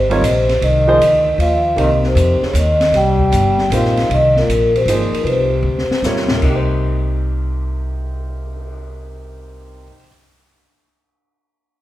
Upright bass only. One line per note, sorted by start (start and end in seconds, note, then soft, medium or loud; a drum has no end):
0.00 0.21 G#1 medium
0.21 0.59 A#1 medium
0.61 0.99 C2 medium
0.99 1.37 D2 medium
1.38 1.76 D#2 medium
1.76 2.15 C2 medium
2.15 2.40 F2 medium
2.41 muted upright bass stroke soft
2.53 2.91 D#2 medium
2.92 3.30 C2 medium
3.32 3.70 G1 medium
3.70 4.08 A#1 medium
4.10 4.47 C2 medium
4.48 4.85 A#1 medium
4.86 5.11 G#1 medium
5.12 muted upright bass stroke soft
5.24 5.62 C2 medium
5.63 5.88 D2 medium
5.89 muted upright bass stroke soft
6.02 6.40 D#2 medium
6.41 9.88 C2 medium